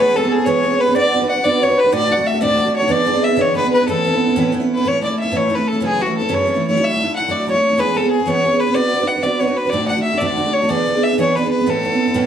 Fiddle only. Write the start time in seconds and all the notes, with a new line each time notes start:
0.00 B4
0.16 A4
0.32 G#4
0.45 C#5
0.80 B4
0.96 D5
1.29 F#5
1.44 D5
1.63 C#5
1.79 B4
1.94 D5
2.12 F#5
2.27 E5
2.42 D5
2.76 C#5
2.91 D5
3.24 E5
3.41 C#5
3.56 B4
3.73 B4
3.88 A4
4.74 B4
4.88 C#5
5.03 D5
5.20 E5
5.37 C#5
5.54 B4
5.68 A4
5.85 G#4
6.01 F#4
6.17 A4
6.34 C#5
6.67 C#5
6.84 E5
7.16 F#5
7.31 D5
7.50 C#5
7.80 B4
7.97 A4
8.11 G#4
8.27 C#5
8.60 B4
8.74 D5
9.07 F#5
9.23 D5
9.40 C#5
9.57 B4
9.70 D5
9.88 F#5
10.02 E5
10.18 D5
10.54 C#5
10.69 D5
11.03 E5
11.21 C#5
11.36 B4
11.52 B4
11.70 A4